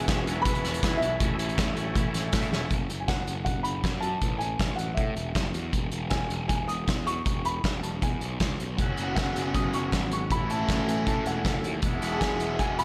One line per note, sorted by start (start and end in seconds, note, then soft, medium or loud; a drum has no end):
0.00 0.40 G#4 medium
0.00 1.18 B4 medium
0.00 2.67 E5 medium
0.00 0.46 G#5 loud
0.00 2.67 G#5 medium
0.00 2.67 C#6 medium
0.07 0.25 E1 loud
0.07 0.24 E2 medium
0.07 0.24 B2 medium
0.07 0.26 E3 medium
0.07 0.26 G#3 loud
0.07 0.26 B3 medium
0.07 0.26 C#4 medium
0.07 0.27 E4 loud
0.07 kick loud
0.07 snare loud
0.07 closed hi-hat loud
0.25 0.44 E1 loud
0.25 0.43 E2 medium
0.25 0.43 B2 loud
0.25 0.44 E3 loud
0.25 0.45 G#3 loud
0.25 0.45 B3 loud
0.25 0.45 C#4 loud
0.25 0.46 E4 loud
0.25 closed hi-hat medium
0.42 0.79 E1 medium
0.42 0.61 E2 loud
0.42 0.62 B2 medium
0.42 0.62 E3 medium
0.42 0.96 B4 medium
0.42 0.96 B5 loud
0.42 kick loud
0.42 closed hi-hat loud
0.46 0.63 G#3 loud
0.46 0.63 B3 medium
0.46 0.63 E4 medium
0.55 closed hi-hat medium
0.62 0.81 E2 medium
0.62 0.81 B2 medium
0.62 0.82 E3 medium
0.62 0.82 G#3 medium
0.62 0.82 B3 medium
0.62 0.82 C#4 loud
0.62 0.83 E4 medium
0.62 snare soft
0.62 closed hi-hat medium
0.74 closed hi-hat medium
0.82 0.99 E2 medium
0.82 1.00 E2 medium
0.82 1.00 B2 medium
0.82 1.01 E3 medium
0.82 1.01 G#3 medium
0.82 1.01 B3 medium
0.82 1.02 E4 medium
0.82 kick loud
0.82 snare loud
0.82 closed hi-hat loud
0.97 1.19 E2 loud
0.97 1.19 B2 loud
0.97 2.27 E4 medium
0.97 2.27 E5 loud
1.01 1.18 B1 loud
1.01 1.18 E3 loud
1.01 1.19 G#3 loud
1.01 1.20 B3 loud
1.01 1.20 C#4 loud
1.01 1.20 E4 loud
1.01 closed hi-hat medium
1.19 1.37 A1 medium
1.19 1.37 A2 loud
1.19 1.37 E3 loud
1.19 1.37 G#3 loud
1.19 1.38 A3 loud
1.19 1.38 C#4 loud
1.19 1.39 E4 loud
1.19 2.68 A4 medium
1.19 kick loud
1.19 closed hi-hat loud
1.38 1.55 A1 medium
1.38 1.56 A2 medium
1.38 1.56 E3 medium
1.38 1.57 A3 medium
1.38 1.58 C#4 medium
1.38 1.58 E4 medium
1.38 closed hi-hat medium
1.49 closed hi-hat soft
1.57 1.74 A1 medium
1.57 1.75 A2 medium
1.57 1.76 E3 medium
1.57 1.75 G#3 loud
1.57 1.76 A3 medium
1.57 1.77 C#4 loud
1.57 1.78 E4 medium
1.57 kick loud
1.57 snare loud
1.57 closed hi-hat loud
1.76 1.93 A1 medium
1.76 1.94 A2 loud
1.76 1.95 E3 medium
1.76 1.95 G#3 medium
1.76 1.95 A3 medium
1.76 1.96 C#4 loud
1.76 1.96 E4 loud
1.76 closed hi-hat medium
1.95 2.29 A1 medium
1.95 2.13 A2 medium
1.95 2.13 E3 medium
1.95 2.13 G#3 medium
1.95 2.14 A3 loud
1.95 2.14 C#4 medium
1.95 2.15 E4 loud
1.95 kick loud
1.95 closed hi-hat loud
2.14 2.32 A2 medium
2.14 2.32 E3 medium
2.14 2.32 G#3 medium
2.14 2.33 A3 medium
2.14 2.33 C#4 medium
2.14 2.34 E4 medium
2.14 snare soft
2.14 closed hi-hat medium
2.33 2.50 A2 medium
2.33 2.52 A2 medium
2.33 2.52 E3 medium
2.33 2.53 A3 medium
2.33 2.53 C#4 medium
2.33 2.53 E4 loud
2.33 kick loud
2.33 snare loud
2.33 closed hi-hat loud
2.42 closed hi-hat soft
2.51 2.69 E1 loud
2.51 2.70 A2 medium
2.51 2.70 E3 loud
2.51 2.69 G#3 loud
2.51 2.70 A3 loud
2.51 2.71 C#4 loud
2.51 2.71 E4 loud
2.51 snare medium
2.71 2.87 F#1 medium
2.71 kick medium
2.71 closed hi-hat medium
2.90 3.06 F#1 medium
2.90 closed hi-hat medium
3.00 3.08 G#5 medium
3.08 3.24 F#1 medium
3.08 3.43 F#5 medium
3.08 kick loud
3.08 snare medium
3.08 closed hi-hat medium
3.27 3.44 F#1 medium
3.27 closed hi-hat medium
3.45 3.62 F#1 medium
3.45 3.65 F#5 medium
3.45 kick loud
3.45 closed hi-hat medium
3.63 3.81 F#1 medium
3.63 4.03 B5 medium
3.63 closed hi-hat medium
3.84 4.16 F#2 medium
3.84 kick loud
3.84 snare loud
3.84 closed hi-hat medium
4.01 4.41 A5 loud
4.01 closed hi-hat medium
4.22 4.54 A1 medium
4.22 kick loud
4.22 closed hi-hat medium
4.38 4.79 G#5 medium
4.38 closed hi-hat medium
4.59 4.76 A1 medium
4.59 kick loud
4.59 snare loud
4.59 closed hi-hat medium
4.76 4.95 A1 medium
4.76 4.97 F#5 medium
4.76 closed hi-hat medium
4.94 5.14 A2 medium
4.94 5.49 E5 medium
4.94 kick loud
4.94 closed hi-hat medium
5.16 5.32 E1 medium
5.16 closed hi-hat medium
5.35 5.52 F#1 medium
5.35 kick loud
5.35 snare loud
5.35 closed hi-hat medium
5.54 5.70 E2 medium
5.54 closed hi-hat medium
5.73 5.90 E1 medium
5.73 kick loud
5.73 closed hi-hat medium
5.92 6.08 E1 medium
5.92 closed hi-hat medium
6.10 6.28 E1 medium
6.10 6.47 G#5 medium
6.10 kick loud
6.10 snare loud
6.10 closed hi-hat medium
6.30 6.47 E1 medium
6.30 closed hi-hat medium
6.48 6.66 E1 medium
6.48 6.68 G#5 medium
6.48 kick loud
6.48 closed hi-hat medium
6.68 6.85 E1 medium
6.68 7.07 D#6 medium
6.68 closed hi-hat medium
6.88 7.20 E2 medium
6.88 kick loud
6.88 snare loud
6.88 closed hi-hat medium
7.07 7.46 C#6 loud
7.07 closed hi-hat medium
7.26 7.58 E1 medium
7.26 kick loud
7.26 closed hi-hat medium
7.45 7.84 B5 medium
7.45 closed hi-hat medium
7.64 7.80 E1 medium
7.64 kick loud
7.64 snare loud
7.64 closed hi-hat medium
7.83 7.99 E1 medium
7.83 7.88 A5 medium
7.83 closed hi-hat medium
8.02 8.18 E2 medium
8.02 8.55 G#5 medium
8.02 kick loud
8.02 closed hi-hat medium
8.21 8.37 B1 medium
8.21 closed hi-hat medium
8.40 8.56 C#2 medium
8.40 kick loud
8.40 snare loud
8.40 closed hi-hat medium
8.60 8.76 B1 medium
8.60 closed hi-hat medium
8.77 8.95 F#1 medium
8.77 10.31 F#2 medium
8.77 10.30 C#3 medium
8.77 10.31 F#3 medium
8.77 10.28 B3 medium
8.77 10.31 B3 medium
8.77 11.79 F#4 medium
8.77 11.79 C#5 medium
8.77 10.28 F#5 medium
8.77 kick loud
8.77 closed hi-hat medium
8.81 10.31 C#4 medium
8.81 10.32 F#4 medium
8.97 9.14 F#1 medium
8.97 closed hi-hat medium
9.16 9.33 F#1 medium
9.16 9.55 F#5 medium
9.16 kick loud
9.16 snare loud
9.16 closed hi-hat medium
9.36 9.52 F#1 medium
9.36 closed hi-hat medium
9.54 9.71 F#1 medium
9.54 9.74 D#6 loud
9.54 kick loud
9.54 closed hi-hat medium
9.73 9.90 F#1 medium
9.73 10.09 C#6 medium
9.73 closed hi-hat medium
9.92 10.31 G#1 medium
9.92 kick loud
9.92 snare loud
9.92 closed hi-hat medium
10.11 10.32 C#6 medium
10.11 closed hi-hat medium
10.30 10.63 A1 medium
10.30 11.83 A2 medium
10.30 11.83 E3 medium
10.30 11.81 A3 medium
10.30 11.84 A3 medium
10.30 11.84 C#4 medium
10.30 11.85 E4 medium
10.30 12.84 E5 medium
10.30 10.49 B5 medium
10.30 kick loud
10.30 closed hi-hat medium
10.50 10.89 A5 loud
10.50 closed hi-hat medium
10.69 10.85 A1 medium
10.69 kick loud
10.69 snare loud
10.69 closed hi-hat medium
10.88 11.04 A1 medium
10.88 11.07 G#5 medium
10.88 closed hi-hat medium
11.07 11.23 A2 medium
11.07 11.27 A5 medium
11.07 kick loud
11.07 closed hi-hat medium
11.26 11.42 E1 medium
11.26 11.62 F#5 medium
11.26 closed hi-hat medium
11.45 11.61 F#1 medium
11.45 kick loud
11.45 snare loud
11.45 closed hi-hat medium
11.63 11.80 D#2 medium
11.63 closed hi-hat medium
11.82 11.99 E1 medium
11.82 12.84 E2 medium
11.82 12.84 B2 medium
11.82 12.84 E3 medium
11.82 12.84 G#3 medium
11.82 12.84 B3 medium
11.82 12.84 E4 medium
11.82 12.84 G#4 medium
11.82 12.84 D#5 medium
11.82 kick loud
11.82 closed hi-hat medium
12.02 12.18 E1 medium
12.02 closed hi-hat medium
12.12 12.20 A5 medium
12.20 12.37 E1 medium
12.20 12.58 G#5 medium
12.20 kick loud
12.20 snare loud
12.20 closed hi-hat medium
12.40 12.56 E1 medium
12.40 closed hi-hat medium
12.59 12.76 E1 medium
12.59 12.79 G#5 loud
12.59 kick loud
12.59 closed hi-hat medium
12.79 12.84 E1 medium
12.79 12.84 B5 loud
12.79 closed hi-hat medium